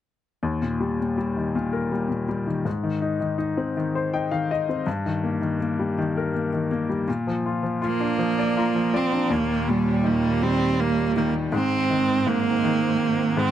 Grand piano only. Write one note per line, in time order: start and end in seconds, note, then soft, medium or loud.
0.43 2.62 D#2 soft
0.62 0.99 A#2 soft
0.80 1.16 G3 soft
1.00 1.54 A#2 soft
1.18 1.90 G3 soft
1.37 2.45 D#3 soft
1.55 2.07 A#2 soft
1.73 2.63 A#4 soft
1.92 2.27 G3 soft
2.09 2.63 A#2 soft
2.29 2.65 G3 soft
2.47 2.65 D#3 soft
2.65 4.83 G#2 soft
2.83 3.19 D#3 soft
3.02 3.37 D#4 soft
3.20 3.75 D#3 soft
3.38 4.12 D#4 soft
3.57 4.68 C4 soft
3.77 4.30 D#3 soft
3.95 4.84 C5 soft
4.13 4.50 D#4 soft
4.13 4.31 G5 soft
4.31 4.85 D#3 soft
4.31 4.49 F5 medium
4.51 4.86 D#4 soft
4.51 4.85 D#5 medium
4.69 4.87 C4 soft
4.87 7.04 G2 medium
5.06 5.40 D#3 soft
5.23 5.59 A#3 soft
5.41 5.97 D#3 soft
5.61 6.33 A#3 soft
5.79 6.88 G3 soft
5.98 6.51 D#3 medium
6.17 7.06 A#4 soft
6.34 6.70 A#3 soft
6.53 7.06 D#3 soft
6.71 7.07 A#3 soft
6.89 7.07 G3 soft
7.08 9.27 A#2 medium
7.27 7.61 F3 soft
7.46 7.80 F4 soft
7.63 8.17 F3 soft
7.82 8.56 F4 soft
8.00 9.11 D4 soft
8.18 8.74 F3 medium
8.39 8.92 D5 soft
8.57 8.92 F4 soft
8.57 8.92 A#5 medium
8.75 9.29 F3 soft
8.94 9.30 F4 soft
8.94 9.28 D5 medium
9.12 9.30 D4 soft
9.30 11.49 D#2 soft
9.68 11.12 A#2 soft
10.04 11.15 D#3 soft
10.42 11.50 G3 soft
11.16 11.52 D#3 medium
11.52 12.25 G#2 medium
11.90 12.63 D#3 soft
12.26 13.36 G#2 soft
12.64 13.51 D#3 soft
13.37 13.51 G#2 medium